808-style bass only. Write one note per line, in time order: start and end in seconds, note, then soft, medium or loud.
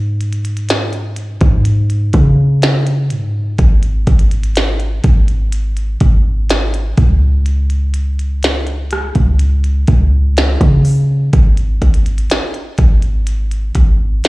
0.00 1.38 G#2 loud
1.41 2.11 G#2 loud
2.14 3.12 C#3 loud
3.11 3.57 G#2 loud
3.59 4.06 G#1 loud
4.07 5.00 G#1 loud
5.04 5.97 G#1 loud
6.01 6.94 G#1 loud
6.98 9.12 C#2 loud
9.16 9.85 C#2 loud
9.88 10.58 C#2 loud
10.61 11.30 C#3 loud
11.33 11.80 G#1 loud
11.82 12.28 G#1 loud
12.79 13.72 G#1 loud
13.76 14.22 G#1 loud